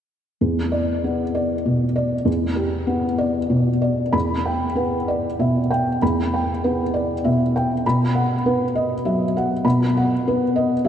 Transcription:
0, 0, Header, 1, 2, 480
1, 0, Start_track
1, 0, Key_signature, 1, "minor"
1, 0, Tempo, 623701
1, 311, Time_signature, 3, 2, 24, 8
1, 4628, Tempo, 603015
1, 8504, End_track
2, 0, Start_track
2, 0, Title_t, "Felt piano"
2, 0, Program_c, 0, 0
2, 316, Note_on_c, 0, 40, 32
2, 441, Control_c, 0, 64, 127
2, 552, Note_on_c, 0, 74, 36
2, 801, Note_on_c, 0, 59, 30
2, 940, Note_off_c, 0, 74, 0
2, 1036, Note_on_c, 0, 74, 28
2, 1183, Note_off_c, 0, 59, 0
2, 1274, Note_on_c, 0, 47, 26
2, 1417, Note_off_c, 0, 74, 0
2, 1505, Note_on_c, 0, 74, 31
2, 1651, Note_off_c, 0, 47, 0
2, 1716, Note_off_c, 0, 40, 0
2, 1733, Note_on_c, 0, 40, 39
2, 1760, Control_c, 0, 64, 0
2, 1882, Note_off_c, 0, 74, 0
2, 1885, Control_c, 0, 64, 127
2, 1963, Note_on_c, 0, 67, 35
2, 2209, Note_on_c, 0, 59, 38
2, 2346, Note_off_c, 0, 67, 0
2, 2450, Note_on_c, 0, 74, 36
2, 2591, Note_off_c, 0, 59, 0
2, 2692, Note_on_c, 0, 47, 33
2, 2838, Note_off_c, 0, 74, 0
2, 2936, Note_on_c, 0, 74, 32
2, 3088, Note_off_c, 0, 47, 0
2, 3149, Note_off_c, 0, 40, 0
2, 3175, Note_on_c, 0, 83, 50
2, 3179, Note_on_c, 0, 40, 38
2, 3185, Note_off_c, 0, 74, 0
2, 3201, Control_c, 0, 64, 0
2, 3329, Control_c, 0, 64, 127
2, 3429, Note_on_c, 0, 79, 32
2, 3568, Note_off_c, 0, 83, 0
2, 3658, Note_on_c, 0, 59, 31
2, 3666, Note_on_c, 0, 71, 31
2, 3813, Note_off_c, 0, 79, 0
2, 3910, Note_on_c, 0, 74, 35
2, 4045, Note_off_c, 0, 59, 0
2, 4049, Note_off_c, 0, 71, 0
2, 4151, Note_on_c, 0, 47, 28
2, 4151, Note_on_c, 0, 76, 26
2, 4291, Note_off_c, 0, 74, 0
2, 4389, Note_off_c, 0, 76, 0
2, 4391, Note_on_c, 0, 79, 33
2, 4533, Note_off_c, 0, 47, 0
2, 4593, Note_off_c, 0, 40, 0
2, 4635, Note_on_c, 0, 83, 37
2, 4639, Note_on_c, 0, 40, 38
2, 4644, Control_c, 0, 64, 0
2, 4764, Control_c, 0, 64, 127
2, 4778, Note_off_c, 0, 79, 0
2, 4885, Note_on_c, 0, 79, 33
2, 5024, Note_off_c, 0, 83, 0
2, 5127, Note_on_c, 0, 71, 32
2, 5132, Note_on_c, 0, 59, 33
2, 5267, Note_off_c, 0, 79, 0
2, 5363, Note_on_c, 0, 74, 34
2, 5507, Note_off_c, 0, 71, 0
2, 5510, Note_off_c, 0, 59, 0
2, 5607, Note_on_c, 0, 76, 26
2, 5609, Note_on_c, 0, 47, 28
2, 5746, Note_off_c, 0, 74, 0
2, 5844, Note_off_c, 0, 76, 0
2, 5858, Note_on_c, 0, 79, 31
2, 5989, Note_off_c, 0, 47, 0
2, 6055, Note_off_c, 0, 40, 0
2, 6090, Note_off_c, 0, 79, 0
2, 6096, Control_c, 0, 64, 0
2, 6101, Note_on_c, 0, 83, 49
2, 6106, Note_on_c, 0, 47, 39
2, 6231, Control_c, 0, 64, 127
2, 6328, Note_on_c, 0, 78, 38
2, 6476, Note_off_c, 0, 83, 0
2, 6572, Note_on_c, 0, 59, 34
2, 6574, Note_on_c, 0, 71, 35
2, 6708, Note_off_c, 0, 78, 0
2, 6810, Note_on_c, 0, 75, 37
2, 6947, Note_off_c, 0, 59, 0
2, 6948, Note_off_c, 0, 71, 0
2, 7047, Note_on_c, 0, 76, 27
2, 7049, Note_on_c, 0, 54, 30
2, 7185, Note_off_c, 0, 75, 0
2, 7282, Note_off_c, 0, 76, 0
2, 7297, Note_on_c, 0, 78, 34
2, 7427, Note_off_c, 0, 54, 0
2, 7498, Note_off_c, 0, 47, 0
2, 7519, Note_on_c, 0, 83, 39
2, 7520, Note_on_c, 0, 47, 45
2, 7534, Control_c, 0, 64, 0
2, 7649, Control_c, 0, 64, 127
2, 7672, Note_off_c, 0, 78, 0
2, 7779, Note_on_c, 0, 78, 37
2, 7901, Note_off_c, 0, 83, 0
2, 8020, Note_on_c, 0, 59, 33
2, 8021, Note_on_c, 0, 71, 36
2, 8149, Note_off_c, 0, 78, 0
2, 8245, Note_on_c, 0, 75, 37
2, 8387, Note_off_c, 0, 59, 0
2, 8387, Note_off_c, 0, 71, 0
2, 8474, Note_on_c, 0, 76, 32
2, 8476, Note_on_c, 0, 54, 34
2, 8504, Note_off_c, 0, 47, 0
2, 8504, Note_off_c, 0, 54, 0
2, 8504, Note_off_c, 0, 75, 0
2, 8504, Note_off_c, 0, 76, 0
2, 8504, End_track
0, 0, End_of_file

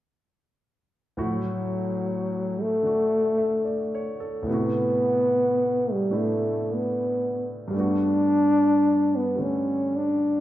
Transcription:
0, 0, Header, 1, 3, 480
1, 0, Start_track
1, 0, Key_signature, 2, "major"
1, 0, Tempo, 818554
1, 701, Time_signature, 4, 2, 24, 8
1, 6100, End_track
2, 0, Start_track
2, 0, Title_t, "Grand piano"
2, 0, Program_c, 0, 0
2, 686, Note_on_c, 0, 38, 48
2, 686, Note_on_c, 0, 45, 44
2, 692, Note_on_c, 0, 57, 45
2, 692, Note_on_c, 0, 64, 44
2, 695, Note_on_c, 0, 66, 53
2, 816, Control_c, 0, 64, 127
2, 1657, Note_on_c, 0, 50, 34
2, 1665, Note_on_c, 0, 62, 28
2, 1668, Note_off_c, 0, 66, 0
2, 1677, Note_on_c, 0, 66, 39
2, 1980, Note_on_c, 0, 76, 38
2, 2140, Note_on_c, 0, 74, 39
2, 2232, Note_off_c, 0, 76, 0
2, 2314, Note_on_c, 0, 73, 44
2, 2444, Note_off_c, 0, 74, 0
2, 2464, Note_on_c, 0, 69, 44
2, 2558, Note_off_c, 0, 73, 0
2, 2585, Note_off_c, 0, 38, 0
2, 2594, Note_off_c, 0, 45, 0
2, 2594, Note_on_c, 0, 38, 48
2, 2603, Note_on_c, 0, 45, 42
2, 2619, Note_off_c, 0, 50, 0
2, 2619, Note_off_c, 0, 57, 0
2, 2619, Note_off_c, 0, 64, 0
2, 2619, Note_on_c, 0, 59, 43
2, 2623, Note_off_c, 0, 62, 0
2, 2629, Note_off_c, 0, 66, 0
2, 2630, Control_c, 0, 64, 0
2, 2633, Note_on_c, 0, 48, 45
2, 2643, Note_on_c, 0, 64, 43
2, 2658, Note_on_c, 0, 66, 51
2, 2713, Note_off_c, 0, 69, 0
2, 2737, Control_c, 0, 64, 127
2, 3568, Note_off_c, 0, 45, 0
2, 3577, Note_off_c, 0, 59, 0
2, 3577, Note_on_c, 0, 45, 35
2, 3582, Note_on_c, 0, 57, 35
2, 3585, Note_off_c, 0, 64, 0
2, 3586, Note_on_c, 0, 59, 31
2, 3587, Note_on_c, 0, 62, 33
2, 3594, Note_on_c, 0, 64, 38
2, 4502, Note_on_c, 0, 43, 46
2, 4519, Note_on_c, 0, 55, 42
2, 4521, Note_off_c, 0, 38, 0
2, 4527, Note_off_c, 0, 57, 0
2, 4534, Note_off_c, 0, 45, 0
2, 4536, Note_on_c, 0, 57, 39
2, 4539, Note_off_c, 0, 59, 0
2, 4539, Note_off_c, 0, 62, 0
2, 4540, Note_off_c, 0, 48, 0
2, 4543, Note_off_c, 0, 64, 0
2, 4545, Control_c, 0, 64, 0
2, 4553, Note_off_c, 0, 66, 0
2, 4555, Note_on_c, 0, 59, 40
2, 4571, Note_on_c, 0, 66, 52
2, 4649, Control_c, 0, 64, 127
2, 5476, Note_off_c, 0, 55, 0
2, 5484, Note_off_c, 0, 57, 0
2, 5485, Note_on_c, 0, 55, 35
2, 5493, Note_on_c, 0, 57, 32
2, 5503, Note_on_c, 0, 50, 38
2, 6100, Note_off_c, 0, 43, 0
2, 6100, Note_off_c, 0, 50, 0
2, 6100, Note_off_c, 0, 55, 0
2, 6100, Note_off_c, 0, 57, 0
2, 6100, Note_off_c, 0, 59, 0
2, 6100, Note_off_c, 0, 66, 0
2, 6100, End_track
3, 0, Start_track
3, 0, Title_t, "Trombone"
3, 0, Program_c, 1, 57
3, 721, Note_on_c, 1, 54, 77
3, 1534, Note_on_c, 1, 57, 90
3, 1543, Note_off_c, 1, 54, 0
3, 2481, Note_off_c, 1, 57, 0
3, 2652, Note_on_c, 1, 59, 91
3, 3471, Note_on_c, 1, 55, 72
3, 3480, Note_off_c, 1, 59, 0
3, 3620, Note_on_c, 1, 57, 78
3, 3628, Note_off_c, 1, 55, 0
3, 3955, Note_on_c, 1, 59, 76
3, 3964, Note_off_c, 1, 57, 0
3, 4408, Note_off_c, 1, 59, 0
3, 4552, Note_on_c, 1, 62, 96
3, 5371, Note_on_c, 1, 59, 75
3, 5380, Note_off_c, 1, 62, 0
3, 5525, Note_on_c, 1, 61, 76
3, 5534, Note_off_c, 1, 59, 0
3, 5844, Note_on_c, 1, 62, 76
3, 5853, Note_off_c, 1, 61, 0
3, 6100, Note_off_c, 1, 62, 0
3, 6100, End_track
0, 0, End_of_file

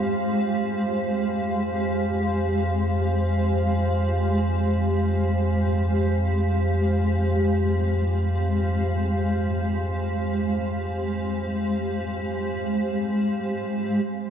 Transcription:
0, 0, Header, 1, 3, 480
1, 0, Start_track
1, 0, Key_signature, -4, "minor"
1, 0, Tempo, 500000
1, 13729, End_track
2, 0, Start_track
2, 0, Title_t, "Ambient pad"
2, 0, Program_c, 0, 92
2, 0, Note_on_c, 0, 56, 66
2, 0, Note_on_c, 0, 67, 62
2, 0, Note_on_c, 0, 72, 71
2, 0, Note_on_c, 0, 77, 64
2, 13485, Note_off_c, 0, 56, 0
2, 13486, Note_off_c, 0, 67, 0
2, 13486, Note_off_c, 0, 77, 0
2, 13491, Note_off_c, 0, 72, 0
2, 13496, Note_on_c, 0, 56, 67
2, 13612, Note_on_c, 0, 67, 72
2, 13729, Note_off_c, 0, 56, 0
2, 13729, Note_off_c, 0, 67, 0
2, 13729, End_track
3, 0, Start_track
3, 0, Title_t, "Synth drone"
3, 0, Program_c, 1, 95
3, 0, Note_on_c, 1, 41, 82
3, 98, Note_off_c, 1, 41, 0
3, 133, Note_on_c, 1, 41, 75
3, 13450, Note_off_c, 1, 41, 0
3, 13729, End_track
0, 0, End_of_file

